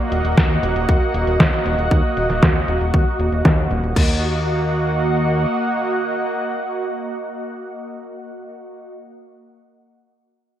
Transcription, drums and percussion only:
0.12 closed hi-hat
0.25 closed hi-hat
0.37 kick, snare, closed hi-hat
0.63 closed hi-hat
0.76 closed hi-hat
0.89 kick, closed hi-hat
1.14 closed hi-hat
1.27 closed hi-hat
1.40 kick, snare, closed hi-hat
1.53 closed hi-hat
1.66 closed hi-hat
1.79 closed hi-hat
1.91 kick, closed hi-hat
2.17 closed hi-hat
2.30 snare, closed hi-hat
2.43 kick, snare, closed hi-hat
2.56 closed hi-hat
2.68 closed hi-hat
2.81 closed hi-hat
2.94 kick, closed hi-hat
3.20 closed hi-hat
3.32 closed hi-hat
3.45 kick, snare, closed hi-hat
3.58 closed hi-hat
3.71 closed hi-hat
3.84 closed hi-hat
3.96 kick, crash

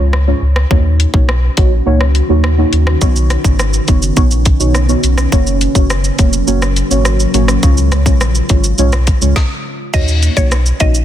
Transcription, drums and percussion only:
0.13 cross-stick
0.56 cross-stick
0.71 kick
1.00 closed hi-hat
1.14 kick
1.29 cross-stick
1.57 kick, closed hi-hat
2.01 cross-stick
2.15 closed hi-hat
2.44 cross-stick
2.73 closed hi-hat
2.87 cross-stick
3.01 kick, shaker
3.16 shaker
3.30 cross-stick, closed hi-hat, shaker
3.44 kick, shaker
3.59 cross-stick, shaker
3.74 shaker
3.88 kick, closed hi-hat, shaker
4.02 shaker
4.17 kick, shaker
4.31 shaker
4.46 kick, closed hi-hat, shaker
4.60 shaker
4.75 cross-stick, shaker
4.89 shaker
5.04 closed hi-hat, shaker
5.18 cross-stick, shaker
5.32 kick, shaker
5.47 shaker
5.61 closed hi-hat, shaker
5.75 kick, shaker
5.90 cross-stick, shaker
6.04 shaker
6.19 kick, closed hi-hat, shaker
6.33 shaker
6.48 shaker
6.62 cross-stick, shaker
6.76 closed hi-hat, shaker
6.91 shaker
7.05 cross-stick, shaker
7.20 shaker
7.34 closed hi-hat, shaker
7.48 cross-stick, shaker
7.63 kick, shaker
7.77 shaker
7.92 cross-stick, closed hi-hat, shaker
8.06 kick, shaker
8.21 cross-stick, shaker
8.35 shaker
8.49 kick, closed hi-hat, shaker
8.64 shaker
8.78 shaker
8.93 cross-stick, shaker
9.07 kick, closed hi-hat, shaker
9.22 shaker
9.36 kick, snare
9.94 kick, crash, shaker
10.08 shaker
10.23 closed hi-hat, shaker
10.37 kick, shaker
10.52 cross-stick, shaker
10.66 shaker
10.80 kick, closed hi-hat, shaker
10.95 shaker

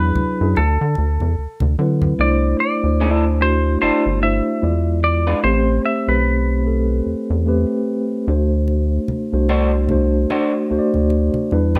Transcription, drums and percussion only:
0.15 muted conga, high conga, low conga
0.56 muted conga
0.95 muted conga
1.20 high conga
1.60 high conga
2.02 low conga
8.68 muted conga
9.08 muted conga, high conga
9.49 muted conga
9.89 high conga, low conga
10.30 muted conga
10.94 high conga
11.10 muted conga
11.34 high conga
11.51 muted conga
11.75 low conga

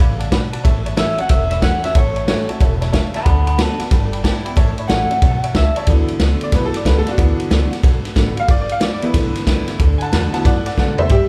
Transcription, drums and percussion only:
0.20 ride
0.32 kick, snare, ride
0.53 ride
0.65 kick, ride
0.86 ride
0.97 snare, ride
1.18 ride
1.29 kick, snare, ride
1.51 snare, ride
1.62 kick, snare, ride
1.84 snare, ride
1.95 kick, ride
2.16 ride
2.28 snare, ride
2.49 ride
2.61 kick, ride
2.82 snare, ride
2.93 kick, snare, ride
3.14 snare, ride
3.26 kick, ride
3.47 ride
3.58 snare, ride
3.80 snare, ride
3.91 kick, snare, ride
4.13 ride
4.24 kick, snare, ride
4.46 ride
4.57 kick, ride
4.78 ride
4.89 snare, ride
5.11 ride
5.22 kick, ride
5.44 ride
5.55 kick, snare, ride
5.76 ride
5.87 kick, ride
6.08 ride
6.20 snare, ride
6.41 ride
6.52 kick, snare, ride
6.74 snare, ride
6.85 kick, snare, ride
7.07 snare, ride
7.18 kick, ride
7.40 ride
7.51 snare, ride
7.73 snare, ride
7.83 kick, snare, ride
8.05 snare, ride
8.16 kick, snare, ride
8.37 ride
8.48 kick, ride
8.69 ride
8.81 snare, ride
9.02 ride
9.14 kick, snare, ride
9.35 snare, ride
9.47 kick, snare, ride
9.68 snare, ride
9.79 kick, ride
10.01 ride
10.13 snare, ride
10.34 snare, ride
10.45 kick, snare, ride
10.66 snare, ride
10.77 kick, snare
10.88 mid tom
10.98 floor tom
11.09 kick, ride

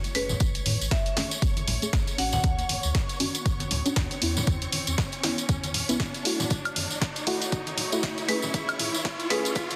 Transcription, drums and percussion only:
0.04 closed hi-hat, tambourine
0.15 open hi-hat
0.29 tambourine, high conga, low conga
0.40 kick, closed hi-hat, tambourine
0.55 closed hi-hat, tambourine
0.66 open hi-hat, high conga
0.81 tambourine
0.91 kick, snare, closed hi-hat, tambourine
1.06 closed hi-hat, tambourine
1.16 snare, open hi-hat, high conga
1.31 closed hi-hat, tambourine
1.42 kick, closed hi-hat, tambourine
1.57 closed hi-hat, tambourine, high conga
1.68 open hi-hat, low conga
1.82 closed hi-hat, tambourine
1.93 kick, snare, closed hi-hat, tambourine, high conga
2.07 closed hi-hat, tambourine
2.18 open hi-hat
2.32 tambourine, high conga, low conga
2.44 kick, closed hi-hat, tambourine
2.59 closed hi-hat, tambourine
2.69 open hi-hat, high conga
2.83 tambourine
2.95 kick, snare, closed hi-hat, tambourine
3.09 closed hi-hat, tambourine
3.20 open hi-hat, high conga
3.35 closed hi-hat, tambourine
3.46 kick, closed hi-hat, tambourine
3.60 closed hi-hat, tambourine, high conga
3.71 open hi-hat, low conga
3.86 closed hi-hat, tambourine
3.96 kick, snare, closed hi-hat, tambourine, high conga
4.11 closed hi-hat, tambourine
4.22 open hi-hat
4.37 tambourine, high conga, low conga
4.47 kick, closed hi-hat, tambourine
4.62 closed hi-hat, tambourine
4.72 open hi-hat, high conga
4.87 closed hi-hat, tambourine
4.98 kick, snare, closed hi-hat, tambourine
5.12 closed hi-hat, tambourine
5.23 snare, open hi-hat, high conga
5.38 closed hi-hat, tambourine
5.49 kick, closed hi-hat, tambourine
5.63 closed hi-hat, tambourine, high conga
5.74 open hi-hat, low conga
5.89 closed hi-hat, tambourine
6.00 kick, snare, closed hi-hat, tambourine, high conga
6.14 closed hi-hat, tambourine
6.25 open hi-hat
6.40 tambourine, high conga, low conga
6.50 kick, closed hi-hat, tambourine
6.65 closed hi-hat, tambourine, high woodblock
6.76 open hi-hat, high conga
6.91 tambourine
7.01 kick, snare, closed hi-hat, tambourine
7.16 closed hi-hat, tambourine
7.26 open hi-hat, high conga
7.42 closed hi-hat, tambourine
7.52 kick, closed hi-hat, tambourine
7.67 closed hi-hat, tambourine, high conga
7.77 open hi-hat, low conga
7.92 closed hi-hat, tambourine
8.03 kick, snare, closed hi-hat, tambourine, high conga
8.18 closed hi-hat, tambourine
8.29 open hi-hat
8.42 tambourine, high conga, low conga
8.54 kick, closed hi-hat, tambourine
8.69 closed hi-hat, tambourine, high woodblock
8.79 open hi-hat, high conga
8.94 tambourine
9.05 kick, snare, closed hi-hat
9.20 closed hi-hat, tambourine
9.30 snare, open hi-hat, high conga
9.45 closed hi-hat, tambourine
9.55 kick, closed hi-hat, tambourine
9.71 closed hi-hat, tambourine, high conga

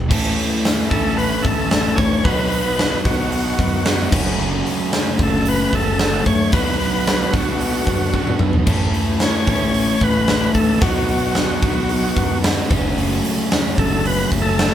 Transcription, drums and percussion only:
0.11 kick, crash
0.39 open hi-hat
0.65 snare, open hi-hat
0.91 kick, open hi-hat
1.19 open hi-hat
1.45 kick, open hi-hat
1.71 snare, open hi-hat
1.98 kick, open hi-hat
2.25 kick, open hi-hat
2.52 open hi-hat
2.79 snare, open hi-hat
3.05 kick, open hi-hat
3.32 open hi-hat
3.59 kick, open hi-hat
3.85 snare, open hi-hat
4.12 kick, crash
4.66 open hi-hat
4.93 snare, open hi-hat
5.19 kick, open hi-hat
5.46 open hi-hat
5.73 kick, open hi-hat
5.99 snare, open hi-hat
6.26 kick, open hi-hat
6.52 kick, open hi-hat
6.80 open hi-hat
7.07 snare, open hi-hat
7.34 kick, open hi-hat
7.60 open hi-hat
7.87 kick, open hi-hat
8.14 kick
8.27 mid tom
8.39 mid tom
8.53 floor tom
8.67 kick, crash
8.94 open hi-hat
9.20 snare, open hi-hat
9.47 kick, open hi-hat
9.74 open hi-hat
10.01 kick, open hi-hat
10.28 snare, open hi-hat
10.54 kick, open hi-hat
10.81 kick, open hi-hat
11.08 open hi-hat
11.35 snare, open hi-hat
11.62 kick, open hi-hat
11.89 open hi-hat
12.17 kick, open hi-hat
12.44 snare, open hi-hat
12.71 kick, open hi-hat
12.98 open hi-hat
13.25 open hi-hat
13.52 snare, open hi-hat
13.78 kick, open hi-hat
14.05 open hi-hat
14.32 kick, open hi-hat
14.59 snare, open hi-hat

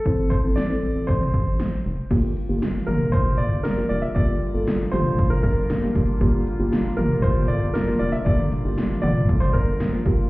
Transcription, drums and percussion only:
0.06 kick
0.31 kick
0.57 snare
1.09 kick
1.21 mid tom
1.34 kick
1.60 snare
2.11 kick, closed hi-hat, crash
2.37 closed hi-hat
2.62 snare, closed hi-hat
2.88 closed hi-hat, mid tom
3.13 kick, closed hi-hat
3.26 mid tom
3.39 closed hi-hat
3.65 snare, closed hi-hat
3.90 closed hi-hat
4.16 kick, closed hi-hat
4.42 closed hi-hat
4.67 snare, closed hi-hat
4.93 closed hi-hat, mid tom
5.19 kick, closed hi-hat
5.31 mid tom
5.44 kick, closed hi-hat
5.70 snare, closed hi-hat
5.95 kick, closed hi-hat
6.21 kick, closed hi-hat
6.47 closed hi-hat
6.72 snare, closed hi-hat
6.98 closed hi-hat, mid tom
7.24 kick, closed hi-hat
7.36 mid tom
7.49 closed hi-hat
7.75 snare, closed hi-hat
8.01 closed hi-hat
8.26 kick, closed hi-hat
8.39 mid tom
8.52 closed hi-hat
8.77 snare, closed hi-hat
9.03 closed hi-hat, mid tom, cowbell
9.29 kick, closed hi-hat
9.41 mid tom
9.54 kick, closed hi-hat
9.80 snare, closed hi-hat
10.06 kick, closed hi-hat

